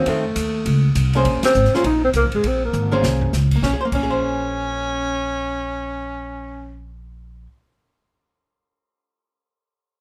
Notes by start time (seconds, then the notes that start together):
Already playing: C4
0.06 F2 D#3 A3 C4, kick, ride
0.36 D#2, kick, hi-hat pedal, ride
0.66 C#2, kick, ride
0.95 C2, kick, hi-hat pedal, ride
1.13 A#3 C#4 G#4 C5, ride
1.25 A#1, ride
1.43 C4, muted upright bass stroke, snare, ride
1.54 G#1, hi-hat pedal
1.65 snare
1.74 A#3 C#4 F4 G#4 C5, snare
1.84 A#1 D#4, kick, ride
2.05 C4
2.13 C2 A#3, kick, hi-hat pedal, ride
2.25 A#1
2.32 G#1 G#3, ride
2.44 A#1 C4, kick, ride
2.65 A#3
2.73 G#1, hi-hat pedal, mid tom
2.92 A#3 C#4 G#4 C5, mid tom
3.02 C2, snare
3.21 floor tom
3.33 C#2, snare, hi-hat pedal
3.51 kick, crash
3.56 A#3
3.62 A#1 C#4, kick, snare
3.73 G#4
3.81 C5
3.85 A#3
3.92 A#1 C#4, kick, crash
4.03 G#4
4.10 C5